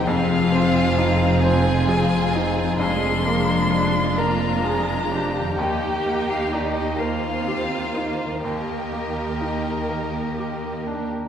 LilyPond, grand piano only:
\new Staff \with { instrumentName = "Grand piano" } { \time 6/8 \key ees \major \tempo 4. = 43 f,8 c'8 ees'8 c''8 aes'8 ees'8 | f,8 bes8 d'8 bes'8 aes'8 d'8 | ees,8 bes8 ees'8 bes'8 g'8 ees'8 | ees,8 bes8 ees'8 bes'8 g'8 d'8 | }